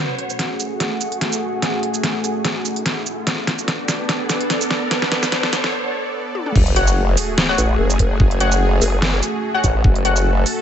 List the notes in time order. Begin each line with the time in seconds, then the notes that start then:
Already playing: A3 C#4 F#4 G#4 B4 F#5 B5, riser
0.07 A3
0.19 closed hi-hat
0.30 shaker
0.39 snare, closed hi-hat
0.60 closed hi-hat, shaker
0.66 G#5
0.80 snare, closed hi-hat
1.01 closed hi-hat, shaker
1.12 closed hi-hat
1.21 snare, closed hi-hat
1.32 shaker
1.62 snare, closed hi-hat
1.83 closed hi-hat
1.94 shaker
2.03 snare, closed hi-hat
2.24 closed hi-hat, shaker
2.45 snare, closed hi-hat
2.65 closed hi-hat, shaker
2.76 closed hi-hat
2.86 snare, closed hi-hat
3.06 shaker
3.27 B3 D4 A4 D5, snare, closed hi-hat
3.42 B4
3.47 snare, closed hi-hat
3.58 shaker
3.68 snare, closed hi-hat
3.88 snare, closed hi-hat, shaker
4.09 snare, closed hi-hat
4.29 A5, snare, closed hi-hat, shaker
4.41 closed hi-hat
4.50 snare, closed hi-hat
4.61 shaker
4.71 snare
4.91 snare, closed hi-hat
5.02 snare
5.12 snare, closed hi-hat
5.23 snare, shaker
5.32 snare, closed hi-hat
5.43 snare
5.53 snare, closed hi-hat, shaker
5.64 snare
6.35 high tom
6.46 mid tom
6.55 F#1 A3 C#4 F#4 G#4, kick, crash, sub drop
6.67 A3, closed hi-hat
6.76 F#4 C#5 F#5, closed hi-hat
6.87 shaker
7.17 open hi-hat, shaker
7.38 snare
7.43 G#5
7.49 F#4 C#5 F#5
7.58 A1, closed hi-hat, shaker
7.79 F#1
7.90 shaker
7.99 kick, closed hi-hat
8.20 F#1, kick
8.31 closed hi-hat
8.40 F#4 C#5 F#5, closed hi-hat
8.52 shaker
8.81 F#1, open hi-hat, shaker
9.02 snare
9.23 closed hi-hat, shaker
9.54 F#4 C#5 F#5
9.64 A1, kick, closed hi-hat, shaker
9.84 F#1 A4, kick
9.96 closed hi-hat
10.05 F#4 C#5 F#5, closed hi-hat
10.16 shaker
10.46 open hi-hat, shaker